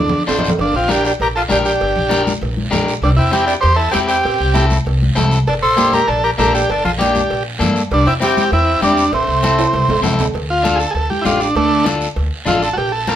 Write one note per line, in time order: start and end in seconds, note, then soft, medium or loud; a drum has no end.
0.00 0.23 D4 medium
0.08 low conga medium
0.08 low timbale medium
0.27 0.52 A1 medium
0.27 0.49 D4 medium
0.27 0.49 F4 medium
0.27 0.49 C5 medium
0.27 low timbale medium
0.27 short guiro medium
0.38 low conga medium
0.38 low timbale medium
0.44 low conga medium
0.44 short guiro medium
0.49 low timbale medium
0.58 0.71 G1 medium
0.58 0.74 A#3 medium
0.58 0.75 D4 medium
0.58 cowbell medium
0.58 high conga soft
0.58 long guiro medium
0.74 1.10 A#1 medium
0.74 0.89 C4 medium
0.74 0.89 F4 medium
0.88 1.10 D4 medium
0.88 1.05 D4 medium
0.88 1.10 G4 medium
0.88 1.05 G4 medium
0.88 1.11 A#4 medium
0.88 cowbell medium
0.88 high conga medium
0.88 short guiro medium
1.05 1.12 D4 medium
1.05 1.13 G4 medium
1.05 short guiro medium
1.20 1.44 A#1 medium
1.20 1.28 G4 medium
1.20 1.28 A#4 loud
1.20 cowbell medium
1.20 high conga soft
1.20 long guiro medium
1.36 1.43 F4 medium
1.36 1.42 A4 loud
1.49 1.75 A#1 loud
1.49 1.71 D4 medium
1.49 1.58 D4 medium
1.49 1.71 G4 medium
1.49 1.58 G4 medium
1.49 1.71 A#4 medium
1.49 cowbell medium
1.49 high conga medium
1.49 short guiro medium
1.65 2.23 D4 medium
1.65 2.23 G4 medium
1.65 short guiro medium
1.81 1.93 G1 medium
1.81 cowbell medium
1.81 high conga soft
1.81 long guiro medium
1.96 2.33 A#1 medium
1.96 low conga medium
2.09 2.32 D4 medium
2.09 2.32 G4 medium
2.09 2.32 A#4 medium
2.09 cowbell medium
2.09 high conga medium
2.09 short guiro medium
2.27 high conga medium
2.27 short guiro medium
2.41 2.66 A#1 loud
2.41 cowbell medium
2.41 high conga soft
2.41 long guiro medium
2.57 high conga medium
2.71 2.97 A#1 loud
2.71 2.93 D4 medium
2.71 2.93 G4 medium
2.71 2.93 A#4 medium
2.71 cowbell medium
2.71 high conga medium
2.71 low conga medium
2.71 low timbale medium
2.71 short guiro medium
2.88 short guiro medium
3.02 3.14 C2 loud
3.02 3.11 G3 medium
3.02 3.10 D4 medium
3.02 cowbell medium
3.02 high conga soft
3.02 long guiro medium
3.17 3.54 E2 medium
3.17 3.32 C4 medium
3.17 3.32 E4 medium
3.31 3.54 C4 medium
3.31 3.46 C4 medium
3.31 3.54 E4 medium
3.31 3.54 G4 medium
3.31 3.45 G4 medium
3.31 cowbell medium
3.31 high conga medium
3.31 short guiro medium
3.47 3.54 D4 medium
3.47 3.54 G4 medium
3.47 short guiro medium
3.61 3.88 E2 loud
3.61 3.75 G4 medium
3.61 3.76 C5 loud
3.61 cowbell medium
3.61 high conga soft
3.61 long guiro medium
3.75 3.91 E4 medium
3.75 3.92 A4 loud
3.91 4.19 E2 loud
3.91 3.99 C4 medium
3.91 4.15 C4 medium
3.91 4.15 E4 medium
3.91 4.00 G4 medium
3.91 4.15 G4 medium
3.91 cowbell medium
3.91 high conga medium
3.91 short guiro medium
4.08 4.66 C4 medium
4.08 4.66 G4 medium
4.08 short guiro medium
4.24 4.37 A1 medium
4.24 cowbell loud
4.24 high conga soft
4.24 long guiro medium
4.40 4.77 C2 medium
4.54 4.76 C4 medium
4.54 4.76 E4 medium
4.54 4.76 A4 medium
4.54 cowbell medium
4.54 high conga loud
4.54 short guiro medium
4.70 high conga medium
4.70 short guiro medium
4.85 5.11 C2 loud
4.85 cowbell medium
4.85 high conga soft
4.85 long guiro medium
5.02 high conga medium
5.15 5.41 C2 loud
5.15 5.37 C4 medium
5.15 5.37 E4 medium
5.15 5.38 A4 loud
5.15 cowbell medium
5.15 high conga medium
5.15 low conga medium
5.15 low timbale medium
5.15 short guiro medium
5.32 short guiro medium
5.47 5.60 G1 medium
5.47 5.55 D4 medium
5.47 5.54 A4 medium
5.47 cowbell medium
5.47 high conga soft
5.47 long guiro medium
5.62 5.99 A#1 medium
5.62 5.91 A4 loud
5.62 5.94 C5 loud
5.77 5.99 A#3 medium
5.77 5.99 D4 medium
5.77 5.99 G4 medium
5.77 cowbell medium
5.77 high conga medium
5.77 short guiro medium
5.93 6.08 G4 medium
5.93 6.09 A#4 medium
5.93 high conga medium
5.93 short guiro medium
6.07 6.33 A#1 loud
6.07 6.22 D4 medium
6.07 6.24 A4 loud
6.07 cowbell medium
6.07 high conga soft
6.07 long guiro medium
6.24 6.30 G4 medium
6.24 6.31 A#4 loud
6.38 6.63 A#1 loud
6.38 6.60 A#3 medium
6.38 6.60 D4 medium
6.38 6.53 G4 medium
6.38 6.60 A4 medium
6.38 6.53 A#4 medium
6.38 cowbell medium
6.38 high conga medium
6.38 low timbale medium
6.38 short guiro medium
6.54 6.68 D4 medium
6.54 6.70 G4 medium
6.54 short guiro medium
6.69 6.81 G1 medium
6.69 6.84 D4 medium
6.69 6.84 A4 medium
6.69 cowbell loud
6.69 high conga soft
6.69 long guiro medium
6.84 7.21 A#1 medium
6.84 6.91 F4 medium
6.84 6.92 A4 medium
6.84 low conga medium
6.98 7.20 A#3 medium
6.98 7.20 D4 soft
6.98 7.42 D4 medium
6.98 7.21 G4 medium
6.98 7.43 G4 medium
6.98 cowbell medium
6.98 high conga medium
6.98 short guiro medium
7.15 high conga medium
7.15 short guiro medium
7.30 7.55 A#1 medium
7.30 cowbell medium
7.30 high conga soft
7.30 long guiro medium
7.59 7.85 G2 loud
7.59 7.81 A#3 medium
7.59 7.81 D4 medium
7.59 7.81 A4 medium
7.59 cowbell medium
7.59 high conga medium
7.59 low conga medium
7.59 short guiro medium
7.76 short guiro medium
7.91 8.03 C2 medium
7.91 8.06 G3 medium
7.91 8.08 D4 loud
7.91 cowbell loud
7.91 high conga soft
7.91 long guiro medium
8.06 8.43 E2 medium
8.06 8.13 C4 medium
8.06 8.14 E4 medium
8.20 8.42 C4 medium
8.20 8.50 C4 loud
8.20 8.43 E4 medium
8.20 8.43 G4 medium
8.20 8.51 G4 medium
8.20 cowbell medium
8.20 high conga medium
8.20 short guiro medium
8.37 high conga medium
8.37 short guiro medium
8.52 8.76 E2 loud
8.52 8.80 C4 medium
8.52 8.81 E4 loud
8.52 cowbell medium
8.52 high conga soft
8.52 long guiro medium
8.82 9.07 E2 medium
8.82 9.11 G3 medium
8.82 9.03 C4 medium
8.82 9.12 D4 medium
8.82 9.03 E4 soft
8.82 9.04 G4 medium
8.82 cowbell medium
8.82 high conga medium
8.82 short guiro medium
8.97 short guiro medium
9.12 9.24 A1 loud
9.12 10.00 A3 medium
9.12 10.01 C4 medium
9.12 cowbell loud
9.12 high conga soft
9.12 long guiro medium
9.28 9.64 C2 medium
9.43 9.64 C4 medium
9.43 9.65 E4 medium
9.43 9.65 A4 medium
9.43 cowbell medium
9.43 high conga loud
9.43 short guiro medium
9.59 high timbale medium
9.59 short guiro medium
9.73 9.86 C2 loud
9.73 cowbell medium
9.73 high conga soft
9.73 long guiro medium
9.88 10.02 A1 medium
9.88 high conga medium
9.88 low timbale medium
10.02 10.18 C2 medium
10.02 10.25 C4 medium
10.02 10.25 E4 medium
10.02 10.25 A4 medium
10.02 cowbell medium
10.02 high conga medium
10.02 low conga medium
10.02 low timbale medium
10.02 short guiro medium
10.19 10.33 D2 medium
10.19 low timbale medium
10.19 short guiro medium
10.34 10.83 D2 medium
10.34 cowbell medium
10.34 high conga soft
10.34 long guiro medium
10.50 10.79 F4 medium
10.63 10.85 D4 medium
10.63 10.85 F4 medium
10.63 10.86 A4 medium
10.63 cowbell medium
10.63 high conga medium
10.63 short guiro medium
10.76 10.78 G#4 medium
10.80 10.94 A4 medium
10.80 short guiro medium
10.91 11.07 D2 medium
10.91 10.93 G#4 medium
10.95 11.10 A4 medium
10.95 cowbell medium
10.95 high conga soft
10.95 long guiro medium
11.10 11.25 G4 medium
11.10 high conga medium
11.22 11.49 A1 medium
11.22 11.46 D4 medium
11.22 11.24 E4 medium
11.22 11.47 F4 medium
11.22 high conga medium
11.22 short guiro medium
11.26 11.40 F4 medium
11.26 11.47 G4 medium
11.26 cowbell medium
11.26 low timbale medium
11.40 11.55 D4 medium
11.40 short guiro medium
11.55 12.04 D2 loud
11.55 11.84 A3 medium
11.55 11.86 D4 medium
11.55 cowbell loud
11.55 high conga soft
11.55 long guiro medium
11.84 12.07 D4 medium
11.84 12.07 F4 medium
11.84 12.07 A4 medium
11.84 cowbell medium
11.84 high conga medium
11.84 short guiro medium
12.01 short guiro medium
12.16 12.29 D2 loud
12.16 cowbell medium
12.16 high conga soft
12.16 long guiro medium
12.45 12.71 A1 medium
12.45 12.67 D4 medium
12.45 12.68 F4 medium
12.45 12.62 F4 medium
12.45 12.68 A4 medium
12.45 cowbell medium
12.45 high conga medium
12.45 low conga medium
12.45 low timbale medium
12.45 short guiro medium
12.63 12.77 A4 medium
12.63 short guiro medium
12.73 13.16 A#1 medium
12.73 12.76 F#4 medium
12.73 high conga soft
12.78 12.92 G4 medium
12.78 cowbell loud
12.78 long guiro medium
12.92 13.16 A4 medium
13.07 13.16 C4 medium
13.07 13.16 F4 medium
13.07 13.16 A#4 medium
13.07 cowbell medium
13.07 high conga medium
13.07 short guiro medium